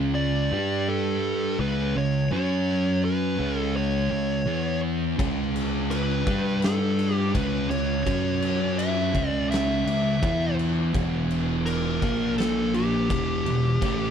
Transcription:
0.00 0.48 C#2 medium
0.00 0.51 C#3 loud
0.00 0.51 G#3 loud
0.00 0.52 C#4 loud
0.15 0.89 D5 loud
0.51 1.55 G2 medium
0.51 1.58 G3 medium
0.51 1.58 D4 medium
0.51 1.59 G4 medium
0.88 1.60 A4 loud
1.59 1.92 C#2 medium
1.59 1.94 C#3 medium
1.59 1.94 G#3 medium
1.59 1.95 C#4 medium
1.59 1.97 B4 medium
1.95 2.29 C#2 medium
1.95 2.24 C#3 medium
1.95 2.24 G#3 medium
1.95 2.31 C#5 medium
2.30 3.35 F#2 medium
2.30 3.38 F#3 loud
2.30 3.38 C#4 loud
2.30 3.38 F#4 loud
2.30 3.04 C#5 loud
3.05 3.59 B4 medium
3.39 4.07 C#2 medium
3.39 4.09 C#3 medium
3.39 4.10 G#3 loud
3.39 4.10 C#4 loud
3.59 3.76 A4 medium
3.76 4.80 C#5 medium
4.10 4.44 C#2 medium
4.10 4.40 C#3 medium
4.10 4.40 G#3 medium
4.46 5.14 E2 medium
4.46 5.17 E3 medium
4.46 5.17 B3 loud
4.46 5.18 E4 loud
5.17 6.23 C#2 medium
5.17 6.25 C#3 loud
5.17 6.25 G#3 loud
5.17 6.25 C#4 loud
5.17 kick loud
5.17 crash medium
5.56 crash medium
5.91 6.59 B4 medium
5.91 crash medium
6.26 7.31 G2 loud
6.26 7.33 G3 medium
6.26 7.33 D4 loud
6.26 7.34 G4 loud
6.26 kick loud
6.26 crash medium
6.62 7.15 A4 medium
6.62 snare loud
6.62 crash medium
6.99 crash medium
7.15 7.32 G4 medium
7.34 7.68 C#2 medium
7.34 7.68 C#3 loud
7.34 7.69 G#3 loud
7.34 7.70 C#4 loud
7.34 7.70 B4 medium
7.34 kick loud
7.34 crash medium
7.69 8.03 C#2 medium
7.69 7.99 C#3 medium
7.69 7.99 G#3 medium
7.69 8.82 C#5 loud
7.69 crash medium
8.06 9.10 F#2 medium
8.06 9.12 F#3 loud
8.06 9.13 C#4 loud
8.06 9.14 F#4 loud
8.06 kick loud
8.06 crash medium
8.42 crash medium
8.79 9.30 E5 loud
8.79 crash medium
9.13 9.83 C#2 loud
9.13 9.84 C#3 medium
9.13 9.85 G#3 medium
9.13 9.85 C#4 medium
9.13 kick loud
9.13 crash medium
9.30 9.46 D5 loud
9.51 10.55 E5 medium
9.51 snare loud
9.51 crash medium
9.86 10.20 C#2 medium
9.86 10.15 C#3 medium
9.86 10.15 G#3 medium
9.86 crash medium
10.21 10.90 E2 medium
10.21 10.93 E3 loud
10.21 10.93 B3 medium
10.21 10.93 E4 loud
10.21 kick loud
10.21 crash medium
10.59 crash medium
10.94 11.98 E1 medium
10.94 12.01 E2 loud
10.94 12.01 B2 loud
10.94 12.01 E3 loud
10.94 kick loud
10.94 crash medium
11.31 crash medium
11.66 12.34 A#4 loud
11.66 crash medium
12.02 13.06 A#1 medium
12.02 13.09 A#2 medium
12.02 13.09 F3 loud
12.02 13.09 A#3 loud
12.02 kick loud
12.02 crash medium
12.38 12.75 A4 loud
12.38 snare loud
12.38 crash medium
12.74 14.11 G4 medium
12.74 crash medium
13.09 13.44 E1 medium
13.09 13.44 E2 medium
13.09 13.45 B2 loud
13.09 13.45 E3 loud
13.09 kick loud
13.09 crash medium
13.45 13.79 E1 medium
13.45 13.74 E2 medium
13.45 13.75 B2 medium
13.45 crash medium
13.80 14.11 A1 medium
13.80 14.11 A2 loud
13.80 14.11 E3 loud
13.80 14.11 A3 loud
13.80 kick loud
13.80 crash medium

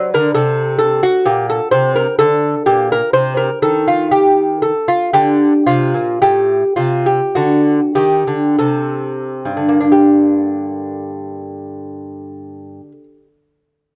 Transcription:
0.00 0.12 F#3 medium
0.14 0.34 D3 medium
0.14 0.34 A#4 medium
0.34 1.00 C3 medium
0.34 0.77 A4 medium
0.79 1.02 A4 medium
1.03 1.25 F#4 medium
1.25 1.59 A#2 medium
1.25 1.48 G4 medium
1.50 1.71 A4 medium
1.71 2.06 C3 medium
1.71 1.95 C5 medium
1.96 2.18 A#4 medium
2.19 2.54 D3 medium
2.19 2.64 A4 medium
2.66 3.01 A#2 medium
2.66 2.90 G4 medium
2.92 3.13 A#4 medium
3.13 3.49 C3 medium
3.13 3.37 C5 medium
3.37 3.62 A#4 medium
3.62 4.72 D#3 medium
3.62 3.87 A4 medium
3.88 4.11 F4 medium
4.11 4.60 G4 medium
4.62 4.88 A4 medium
4.88 5.13 F4 medium
5.13 5.52 D3 medium
5.13 5.65 G4 medium
5.67 5.93 C3 medium
5.67 6.19 F4 medium
5.94 6.20 A#2 soft
6.22 6.62 A2 medium
6.22 6.75 G4 medium
6.76 7.19 C3 medium
6.76 7.06 F4 medium
7.06 7.35 G4 medium
7.35 7.79 D3 medium
7.35 7.93 F#4 medium
7.95 8.25 D#3 medium
7.95 8.55 G4 medium
8.27 8.57 D3 soft
8.59 9.55 C3 soft
8.59 9.88 A4 medium
9.45 12.80 G2 soft
9.57 12.91 D3 soft
9.69 13.03 A#3 soft
9.80 13.15 D4 soft
9.92 13.26 G4 soft

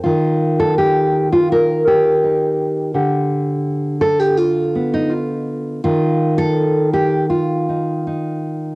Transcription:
0.04 2.95 D#3 medium
0.04 0.59 F4 medium
0.60 0.78 A4 medium
0.78 1.32 G4 medium
1.32 1.51 F4 medium
1.52 1.87 A#4 loud
1.87 2.94 G4 medium
2.24 2.91 D#4 soft
2.94 5.80 D3 medium
2.94 4.01 G4 soft
4.01 4.20 A4 loud
4.20 4.37 G4 loud
4.37 5.08 F4 medium
4.75 5.80 B3 soft
4.94 5.12 D#4 medium
5.10 5.83 F4 medium
5.84 8.75 D#3 medium
5.84 6.37 F4 medium
6.38 6.93 A4 loud
6.93 7.29 G4 medium
7.30 8.75 F4 medium
7.69 8.06 D#4 soft
8.07 8.75 D#4 soft

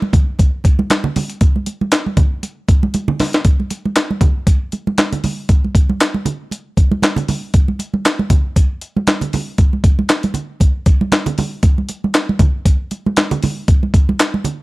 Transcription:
0.02 high conga medium
0.13 kick loud
0.13 closed hi-hat medium
0.13 low conga medium
0.39 kick medium
0.39 closed hi-hat medium
0.39 muted conga soft
0.64 kick medium
0.64 closed hi-hat medium
0.64 muted conga soft
0.79 high conga medium
0.90 snare loud
0.90 clap medium
0.90 closed hi-hat medium
0.90 muted conga soft
0.90 high conga medium
1.04 low conga medium
1.16 open hi-hat medium
1.16 muted conga soft
1.16 high conga medium
1.16 low conga medium
1.30 closed hi-hat medium
1.41 kick loud
1.41 closed hi-hat medium
1.41 muted conga soft
1.56 high conga medium
1.66 closed hi-hat medium
1.66 muted conga soft
1.81 high conga medium
1.92 snare loud
1.92 clap medium
1.92 closed hi-hat loud
1.92 muted conga soft
2.06 high conga medium
2.17 kick loud
2.17 closed hi-hat medium
2.17 low conga medium
2.43 closed hi-hat medium
2.43 muted conga soft
2.69 kick medium
2.69 closed hi-hat medium
2.83 high conga medium
2.94 closed hi-hat medium
2.94 muted conga soft
2.94 high conga medium
3.08 low conga medium
3.20 snare medium
3.20 open hi-hat medium
3.20 muted conga soft
3.20 high conga medium
3.20 low conga medium
3.33 snare loud
3.33 closed hi-hat medium
3.45 kick medium
3.45 closed hi-hat medium
3.45 muted conga soft
3.60 high conga medium
3.71 closed hi-hat medium
3.71 muted conga soft
3.85 high conga medium
3.96 snare loud
3.96 clap medium
3.96 closed hi-hat loud
3.96 muted conga soft
4.11 high conga medium
4.21 kick loud
4.21 closed hi-hat medium
4.21 low conga medium
4.47 kick medium
4.47 closed hi-hat medium
4.47 muted conga soft
4.72 closed hi-hat medium
4.72 muted conga soft
4.87 high conga medium
4.98 snare loud
4.98 clap medium
4.98 closed hi-hat medium
4.98 muted conga soft
4.98 high conga medium
5.13 closed hi-hat medium
5.13 low conga medium
5.24 open hi-hat medium
5.24 muted conga soft
5.24 high conga medium
5.24 low conga medium
5.49 kick loud
5.49 closed hi-hat medium
5.49 muted conga soft
5.64 high conga medium
5.75 kick medium
5.75 closed hi-hat medium
5.89 high conga medium
6.00 snare loud
6.00 clap loud
6.00 closed hi-hat loud
6.14 high conga medium
6.25 closed hi-hat medium
6.25 muted conga soft
6.25 low conga medium
6.51 closed hi-hat medium
6.51 muted conga soft
6.77 kick medium
6.77 closed hi-hat medium
6.92 high conga medium
7.02 snare loud
7.02 clap loud
7.02 closed hi-hat medium
7.02 high conga medium
7.16 closed hi-hat medium
7.16 low conga medium
7.28 open hi-hat medium
7.28 muted conga soft
7.28 high conga medium
7.28 low conga medium
7.54 kick medium
7.54 closed hi-hat medium
7.54 muted conga soft
7.68 high conga medium
7.79 closed hi-hat medium
7.79 muted conga soft
7.94 high conga medium
8.05 snare loud
8.05 clap loud
8.05 closed hi-hat loud
8.05 muted conga soft
8.19 high conga medium
8.30 kick medium
8.30 closed hi-hat medium
8.30 muted conga soft
8.30 low conga medium
8.56 kick medium
8.56 closed hi-hat medium
8.56 muted conga soft
8.81 closed hi-hat medium
8.96 high conga medium
9.07 snare loud
9.07 clap medium
9.07 closed hi-hat medium
9.07 muted conga soft
9.07 high conga medium
9.21 closed hi-hat medium
9.21 low conga medium
9.33 open hi-hat medium
9.33 high conga medium
9.33 low conga medium
9.58 kick loud
9.58 closed hi-hat medium
9.58 muted conga soft
9.73 high conga medium
9.84 kick medium
9.84 closed hi-hat medium
9.99 high conga medium
10.09 snare loud
10.09 clap medium
10.09 closed hi-hat loud
10.09 muted conga soft
10.23 closed hi-hat soft
10.23 high conga medium
10.34 closed hi-hat medium
10.34 muted conga soft
10.34 low conga medium
10.60 kick medium
10.60 closed hi-hat medium
10.60 muted conga soft
10.86 kick medium
10.86 closed hi-hat medium
10.86 muted conga soft
11.01 high conga medium
11.12 snare loud
11.12 clap loud
11.12 closed hi-hat medium
11.12 high conga medium
11.26 closed hi-hat medium
11.26 low conga medium
11.38 open hi-hat medium
11.38 muted conga soft
11.38 high conga medium
11.38 low conga medium
11.63 kick loud
11.63 closed hi-hat medium
11.63 muted conga soft
11.78 high conga medium
11.89 closed hi-hat medium
11.89 muted conga soft
12.04 high conga medium
12.14 snare loud
12.14 clap medium
12.14 closed hi-hat loud
12.29 high conga medium
12.39 kick loud
12.39 closed hi-hat medium
12.39 muted conga soft
12.39 low conga medium
12.65 kick medium
12.65 closed hi-hat medium
12.91 closed hi-hat medium
12.91 muted conga soft
13.06 high conga medium
13.17 snare loud
13.17 clap loud
13.17 closed hi-hat medium
13.17 high conga medium
13.31 closed hi-hat medium
13.31 low conga medium
13.43 open hi-hat medium
13.43 muted conga soft
13.43 high conga medium
13.43 low conga medium
13.68 kick loud
13.68 closed hi-hat medium
13.68 muted conga soft
13.83 high conga medium
13.94 kick medium
13.94 closed hi-hat medium
13.94 muted conga soft
14.09 high conga medium
14.19 snare loud
14.19 clap loud
14.19 closed hi-hat loud
14.34 high conga medium
14.44 closed hi-hat medium
14.44 muted conga soft
14.44 low conga medium

